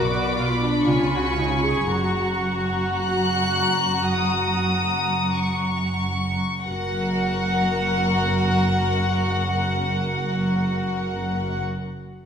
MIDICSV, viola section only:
0, 0, Header, 1, 2, 480
1, 0, Start_track
1, 0, Key_signature, 6, "major"
1, 0, Tempo, 925926
1, 441, Tempo, 1032702
1, 921, Time_signature, 4, 2, 24, 8
1, 921, Tempo, 1129944
1, 1881, Tempo, 1234568
1, 2361, Tempo, 1279318
1, 4942, End_track
2, 0, Start_track
2, 0, Title_t, "Viola section"
2, 0, Program_c, 0, 48
2, 0, Note_on_c, 0, 66, 61
2, 192, Note_on_c, 0, 65, 49
2, 197, Note_off_c, 0, 66, 0
2, 312, Note_off_c, 0, 65, 0
2, 320, Note_on_c, 0, 62, 45
2, 440, Note_off_c, 0, 62, 0
2, 446, Note_on_c, 0, 65, 52
2, 582, Note_off_c, 0, 65, 0
2, 583, Note_on_c, 0, 66, 47
2, 634, Note_off_c, 0, 66, 0
2, 637, Note_on_c, 0, 65, 42
2, 688, Note_off_c, 0, 65, 0
2, 689, Note_on_c, 0, 63, 38
2, 742, Note_off_c, 0, 63, 0
2, 742, Note_on_c, 0, 65, 45
2, 797, Note_off_c, 0, 65, 0
2, 802, Note_on_c, 0, 68, 53
2, 922, Note_on_c, 0, 66, 58
2, 924, Note_off_c, 0, 68, 0
2, 2362, Note_off_c, 0, 66, 0
2, 2851, Note_on_c, 0, 66, 55
2, 4699, Note_off_c, 0, 66, 0
2, 4942, End_track
0, 0, End_of_file